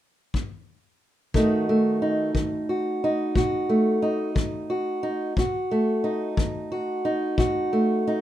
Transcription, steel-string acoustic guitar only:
1.34 1.95 B2 medium
1.34 2.33 D#3 soft
1.34 1.69 A3 medium
1.34 2.02 D#4 soft
1.34 2.69 F#4 soft
1.69 3.68 A3 medium
2.02 3.03 D#4 medium
2.35 2.95 D#3 medium
2.69 3.36 F#4 soft
3.04 4.01 D#4 medium
3.36 3.96 B2 medium
3.36 4.69 F#4 medium
3.69 5.33 A3 soft
4.02 5.02 D#4 medium
4.35 4.96 D#3 medium
4.70 5.33 F#4 medium
5.03 5.33 D#4 medium
5.38 5.98 B2 medium
5.38 6.70 F#4 medium
5.71 7.72 A3 soft
6.04 7.04 D#4 medium
6.38 6.98 D#3 medium
6.72 7.37 F#4 medium
7.05 8.05 D#4 medium
7.38 7.98 B2 medium
7.38 8.21 F#4 medium
7.73 8.21 A3 soft
8.07 8.21 D#4 medium

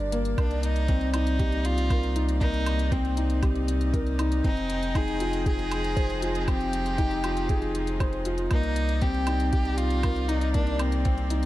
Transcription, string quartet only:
0.00 0.34 G3 medium
0.00 0.34 A#3 medium
0.00 4.41 D5 medium
0.37 4.41 C3 medium
0.37 4.40 G3 medium
0.37 4.40 A#3 medium
0.37 11.46 D#4 medium
4.44 8.47 F3 medium
4.44 8.47 G#3 loud
4.44 8.47 C4 medium
4.44 6.46 G5 medium
6.48 8.49 F4 medium
8.51 11.46 C3 medium
8.51 11.46 G3 medium
8.51 11.46 A#3 medium
8.51 11.46 D5 medium

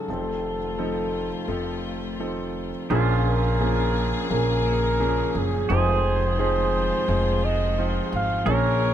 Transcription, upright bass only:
0.08 1.29 F1 medium
1.48 2.71 F1 medium
2.90 4.11 A#1 medium
4.31 5.21 A#1 medium
5.35 5.65 F#1 medium
5.70 6.90 F1 medium
7.08 7.98 F1 medium
8.13 8.42 G#1 medium
8.46 8.94 A#1 loud

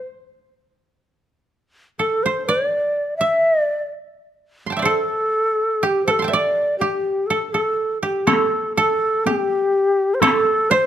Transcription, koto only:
0.00 1.24 C5 soft
1.99 3.90 A4 soft
2.26 3.97 C5 soft
2.49 4.09 D5 medium
3.21 4.70 E5 medium
4.66 5.96 A5 soft
4.66 5.80 C6 soft
4.72 6.07 G5 soft
4.77 6.33 D5 soft
4.77 6.26 E5 soft
4.82 6.07 A4 medium
4.82 6.54 C5 soft
5.83 6.81 G4 medium
6.08 7.30 A4 medium
6.19 7.48 A5 soft
6.19 7.32 C6 soft
6.24 7.77 E5 soft
6.24 7.59 G5 soft
6.33 7.93 D5 medium
6.81 8.02 G4 soft
7.30 7.54 A4 soft
7.54 8.27 A4 soft
8.03 9.26 G4 soft
8.27 8.77 A4 medium
8.77 10.22 A4 medium
9.26 10.86 G4 medium
10.22 10.86 A4 medium
10.71 10.86 C5 medium

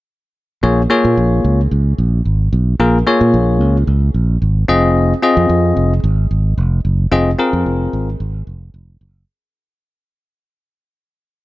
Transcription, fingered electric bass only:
0.63 0.85 A#1 loud
1.05 1.15 A#2 loud
1.17 1.39 A#1 medium
1.44 1.66 C#2 medium
1.71 1.93 C#2 medium
1.98 2.20 A#1 medium
2.25 2.47 G#1 medium
2.53 2.74 B1 loud
2.79 3.01 A#1 loud
3.21 3.35 A#2 loud
3.34 3.61 A#1 loud
3.61 3.82 C#2 medium
3.87 4.09 C#2 medium
4.14 4.36 A#1 medium
4.42 4.63 G#1 medium
4.69 5.12 F1 medium
5.37 5.47 F2 loud
5.49 5.71 F2 loud
5.77 5.98 F1 medium
6.04 6.26 G#1 loud
6.31 6.53 G#1 medium
6.58 6.79 F1 medium
6.85 7.07 F#1 medium
7.12 7.34 F1 loud
7.53 7.63 F2 medium
7.66 7.88 F1 medium
7.93 8.15 G#1 medium
8.20 8.42 G#1 medium
8.47 8.69 F1 medium
8.74 8.96 F1 medium
9.01 9.23 F#1 medium

